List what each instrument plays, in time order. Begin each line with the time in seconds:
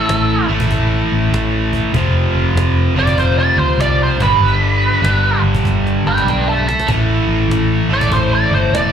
Already playing: distorted electric guitar A2 E3 A3, lead electric guitar A4
0.09 fingered electric bass A1, cajon slap
0.48 fingered electric bass A1, distorted electric guitar A2 E3 A3
0.60 cajon bass
0.70 fingered electric bass A1, cajon bass
1.12 fingered electric bass A1
1.32 fingered electric bass A1, cajon slap
1.73 cajon bass
1.93 fingered electric bass F1, distorted electric guitar F2 C3 F3, cajon bass
2.35 fingered electric bass F1
2.55 fingered electric bass F1, cajon slap
2.96 fingered electric bass F1, distorted electric guitar F2 C3 F3, lead electric guitar D5
3.07 cajon bass
3.18 fingered electric bass F1, lead electric guitar C5, cajon bass
3.39 lead electric guitar D5
3.57 fingered electric bass D2, lead electric guitar C5
3.78 fingered electric bass C2, lead electric guitar D5, cajon slap
4.03 lead electric guitar C5
4.19 fingered electric bass G1, distorted electric guitar G2 D3 G3, cajon bass
4.23 lead electric guitar B4
4.39 fingered electric bass G1
5.02 fingered electric bass G1, distorted electric guitar G2 D3 G3, cajon slap
5.42 fingered electric bass G1
5.55 cajon bass
5.65 fingered electric bass G1, cajon bass, cajon slap
5.87 cajon slap
6.05 fingered electric bass G1, lead electric guitar B4 G5
6.18 cajon slap
6.25 fingered electric bass B1, lead electric guitar B4, cajon slap
6.29 lead electric guitar G5
6.48 lead electric guitar E5 A5
6.68 lead electric guitar E5 A5, cajon slap
6.79 cajon slap
6.87 fingered electric bass A1, distorted electric guitar A2 E3 A3, cajon bass
7.27 fingered electric bass A1
7.48 fingered electric bass A1, cajon slap
7.89 fingered electric bass A1, distorted electric guitar A2 E3 A3
7.93 lead electric guitar D5
8.01 cajon bass
8.11 fingered electric bass A1, lead electric guitar C5, cajon bass
8.35 lead electric guitar D5
8.51 fingered electric bass G1, lead electric guitar C5
8.73 fingered electric bass E1, lead electric guitar D5, cajon slap